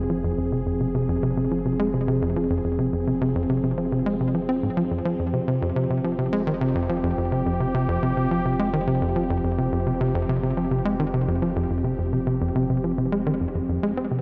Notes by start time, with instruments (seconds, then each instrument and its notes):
Already playing: sub bass F1, analog synth pad F3 C4 G#4
0.10 analog synth bass F3
0.24 analog synth bass F2
0.38 analog synth bass F2
0.52 analog synth bass C3
0.66 analog synth bass F2
0.80 analog synth bass C3
0.95 analog synth bass C3
1.09 analog synth bass F2
1.23 analog synth bass C3
1.37 analog synth bass C3
1.51 analog synth bass F3
1.65 analog synth bass C3
1.80 analog synth bass G#3
1.94 analog synth bass C3
2.08 analog synth bass C3
2.22 analog synth bass F2
2.36 analog synth bass F3
2.50 analog synth bass F2
2.64 analog synth bass F2
2.79 analog synth bass C3
2.93 analog synth bass F2
3.07 analog synth bass C3
3.21 analog synth bass C3
3.35 analog synth bass F2
3.49 analog synth bass C3
3.63 analog synth bass C3
3.78 analog synth bass F3
3.92 analog synth bass C3
4.06 analog synth bass G#3
4.20 analog synth bass C3
4.34 analog synth bass F3
4.49 analog synth bass C4
4.63 analog synth bass G#2
4.77 analog synth bass F3
4.91 analog synth bass F2
5.05 analog synth bass F3
5.19 sub bass F1, analog synth bass F2, analog synth pad G4
5.33 analog synth bass C3
5.48 analog synth bass C3
5.62 analog synth bass F2
5.76 analog synth bass C3
5.90 analog synth bass C3
6.04 analog synth bass F3
6.18 analog synth bass C3
6.33 analog synth bass G#3
6.47 analog synth bass D#3
6.61 analog synth bass C3
6.75 analog synth bass F2
6.89 analog synth bass F3
7.03 analog synth bass F2
7.18 analog synth bass F2
7.32 analog synth bass C3
7.46 analog synth bass F2
7.60 analog synth bass C3
7.74 analog synth bass C3
7.89 analog synth bass F2
8.03 analog synth bass C3
8.17 analog synth bass C3
8.31 analog synth bass F3
8.45 analog synth bass C3
8.59 analog synth bass G#3
8.73 analog synth bass D#3
8.87 analog synth bass C3
9.02 analog synth bass F2
9.16 analog synth bass F3
9.30 analog synth bass F2
9.44 analog synth bass F2
9.58 analog synth bass C3
9.72 analog synth bass F2
9.87 analog synth bass C3
10.01 analog synth bass C3
10.15 analog synth bass F2
10.29 analog synth bass C3
10.43 analog synth bass C3
10.57 analog synth bass F3
10.71 analog synth bass C3
10.86 analog synth bass G#3
11.00 analog synth bass D#3
11.14 analog synth bass C3
11.28 analog synth bass F2
11.42 analog synth bass F3
11.56 analog synth bass F2
11.70 analog synth bass F2
11.84 analog synth bass C3
11.99 analog synth bass F2
12.13 analog synth bass C3
12.27 analog synth bass C3
12.41 analog synth bass F2
12.56 analog synth bass C3
12.70 analog synth bass C3
12.84 analog synth bass F3
12.98 analog synth bass C3
13.12 analog synth bass G#3
13.26 analog synth bass D#3
13.41 analog synth bass F2
13.55 analog synth bass F2
13.69 analog synth bass F2
13.83 analog synth bass G#3
13.97 analog synth bass C4
14.11 analog synth bass C3